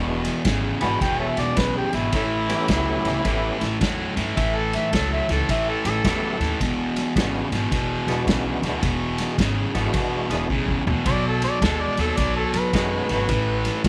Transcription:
Already playing: E1 E2 B2 G#3 B3 D4 E4 F#4
0.25 snare, ride
0.45 G#1 E2 C#3, kick, snare, ride
0.81 G#1 E2 B2 G#3 B3 D4 E4 F#4 F#5 G#5 B5, snare, ride
1.01 E1 E2 B2 G5, kick, snare, ride
1.20 A4 C#5 E5
1.37 E1 D5, snare, ride
1.57 B1 E2 C#3 B4, kick, snare, ride
1.78 G4
1.93 G#1 E2 B2 E4, snare, ride
2.12 A1 A2 E3 A3 C#4 E4, kick, snare, ride
2.49 A3 B3 C#4 E4 G4, snare, ride
2.68 C#2 A2 F#3, kick, snare, ride
3.05 C#2 A2 E3, snare, ride
3.25 A1 A2 E3 A3 B3 C#4 E4 G4, kick, snare, ride
3.61 A1, snare, ride
3.81 E2 A2 F#3, kick, snare, ride
4.16 G2 A2 E3, snare, ride
4.36 A1 A2 E3 E5, kick, snare, ride
4.56 A4
4.73 E5, snare, ride
4.92 C#2 A2 F#3 A4, kick, snare, ride
5.13 E5
5.29 C#2 A2 E3 A4, snare, ride
5.49 A1 A2 E3 E5, kick, snare, ride
5.69 A4
5.85 A1 A4, snare, ride
6.04 E2 A2 F#3 A3 B3 C#4 E4 G4, kick, snare, ride
6.40 D#2 A2 E3, snare, ride
6.60 E1 E2 B2, kick, snare, ride
6.96 snare, ride
7.16 G#1 E2 C#3 G#3 B3 D4 E4 F#4, kick, snare, ride
7.52 G#1 E2 B2, snare, ride
7.72 E1 E2 B2, kick, snare, ride
8.07 E1 G#3 B3 D4 E4 F#4, snare, ride
8.27 B1 E2 C#3, kick, snare, ride
8.62 D2 E2 B2, snare, ride
8.83 E1 E2 B2, kick, snare, ride
9.18 snare, ride
9.38 G#1 E2 C#3, kick, snare, ride
9.74 G#1 E2 B2 G#3 B3 D4 E4 F#4, snare, ride
9.94 E1 E2 B2, kick, snare, ride
10.30 E1 G#3 B3 D4 E4 G#4, snare, ride
10.50 B1 E2 C#3, kick
10.68 kick
10.87 D2 E2 B2, floor tom
11.05 B1 B2 F#3 D5, kick, snare, ride
11.27 A4
11.42 D5, snare, ride
11.62 D#2 B2 G#3 A4, kick, snare, ride
11.82 D5
11.97 D#2 B2 F#3 A4, snare, ride
12.17 B1 B2 F#3 D5, kick, snare, ride
12.36 A4
12.53 B1 B4, snare, ride
12.73 F#2 B2 G#3 A3 B3 C#4 D#4 F#4, kick, snare, ride
13.09 G#1 B2 F#3, snare, ride
13.29 A1 A2 E3, kick, snare, ride
13.65 snare, ride
13.84 C#2 A2 F#3, kick, ride

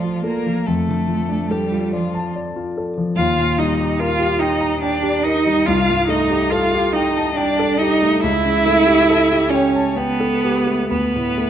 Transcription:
Already playing: D2 A2 F3 D4 F4 A4 D5 A5
0.04 F4
0.24 A#3 A4 A#4
0.46 F3
0.66 F2 A3 A4
0.88 D3
1.08 F3
1.28 D4
1.51 G3 G4 A4
1.72 F4
1.93 F3 F4 D5
2.15 A5
2.36 D5
2.56 F4
2.78 A4
2.98 F3
3.16 D#2 F4 F5
3.38 A#2
3.59 G3 D#4 D#5
3.80 G4
3.99 F4 A#4 F5
4.20 G4
4.39 D#4 D#5 G5
4.61 A#5
4.81 D4 D5 G5
5.03 G4
5.23 D#4 A#4 D#5
5.46 G3
5.66 C2 F4 F5
5.90 G2
6.08 A3 D#4 D#5
6.30 G4
6.50 F4 A4 F5
6.74 G4
6.93 D#4 D#5 G5
7.17 A5
7.35 D4 D5 G5
7.59 A4
7.78 D#4 G4 D#5
8.02 A3
8.21 C#2 E4 E5
8.45 C#3
8.66 A3
8.86 G4
9.10 A4
9.31 G4
9.50 C#4 C#5 G5
9.76 A5
9.96 B3 B4 G5
10.20 A4
10.45 G4
10.67 A3
10.90 D2 B3 B4
11.16 A2
11.38 A3

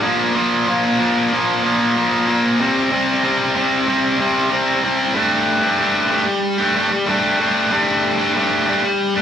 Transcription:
0.02 A#2 F3 A#3
0.34 A#2 F3 A#3
0.68 A#2 F3 A#3
0.99 A#2 F3 A#3
1.32 A#2 F3 A#3
1.63 A#2 F3 A#3
1.95 A#2 F3 A#3
2.28 A#2 F3 A#3
2.60 C3 G3 C4
2.91 C3 G3 C4
3.23 C3 G3 C4
3.55 C3 G3 C4
3.87 C3 G3 C4
4.20 C3 G3 C4
4.51 C3 G3 C4
4.83 C3 G3 C4
5.14 G3 A3 D4 G4
5.63 A3 D4 G4
5.78 G3 A3 D4 G4
6.10 G3 A3 D4 G4
6.27 muted distorted electric guitar stroke
6.58 A3 D4 G4
6.75 G3 A3 D4 G4
6.91 muted distorted electric guitar stroke
7.06 G3 A3 D4 G4
7.38 G3 A3 D4 G4
7.70 G3 A3 D4 G4
8.18 A3 D4 G4
8.34 G3 A3 D4 G4
8.66 G3 A3 D4 G4
8.82 muted distorted electric guitar stroke
9.14 A3 D4 G4

